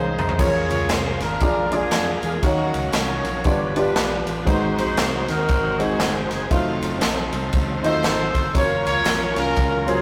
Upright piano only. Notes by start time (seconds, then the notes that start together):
Already playing: F5
0.19 A#5
0.38 A#2 A#3 C#4 F4 G#4 C5
0.46 C#5
1.41 A#2 A#3 D4 F4 G#4 D5
1.71 A#3 D4 F4 G#4 D5
2.42 D#3 A#3 D#4 F#4 C#5 F5
3.44 G2 B3 D4 F4 G4 D5
3.75 B3 D4 F4 G4 D5
4.45 G#2 G#3 C4 D#4 F#4 B4
4.54 C5
5.79 G#3 C4 D#4 F#4 G#4
6.50 F#3 A3 D#4 F4 C5
7.83 A3 D#4 F4 F#4 D#5
8.54 F#3 A#3 C#4 F4 C#5
9.86 F#3 A#3 C#4 F4 C5